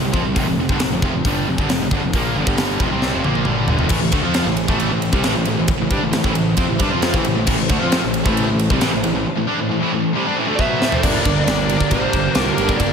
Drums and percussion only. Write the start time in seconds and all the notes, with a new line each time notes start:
0.14 kick
0.36 kick, open hi-hat
0.69 kick
0.80 snare, open hi-hat
1.02 kick
1.25 kick, open hi-hat
1.58 kick
1.69 snare, open hi-hat
1.91 kick
2.13 kick, open hi-hat
2.47 kick
2.58 snare, open hi-hat
2.80 kick
3.02 snare
3.24 high tom
3.35 high tom
3.45 mid tom
3.68 floor tom
3.79 floor tom
3.89 kick, crash
4.12 kick, ride
4.34 snare, ride
4.57 ride
4.68 kick
4.80 ride
5.02 ride
5.13 kick
5.24 snare, ride
5.45 ride
5.68 kick, ride
5.90 kick, ride
6.13 snare, ride
6.24 kick
6.35 ride
6.57 kick, ride
6.79 kick, ride
7.02 snare, ride
7.14 kick
7.25 ride
7.47 kick, crash
7.69 kick, ride
7.92 snare, ride
8.14 ride
8.26 kick
8.37 ride
8.59 ride
8.70 kick
8.81 snare, ride
9.04 ride
10.59 kick
10.82 snare
10.92 floor tom
11.03 kick, crash
11.25 kick, ride
11.47 snare, ride
11.69 ride
11.81 kick
11.91 kick, ride
12.13 kick, ride
12.35 snare, ride
12.58 ride
12.69 kick
12.80 kick, ride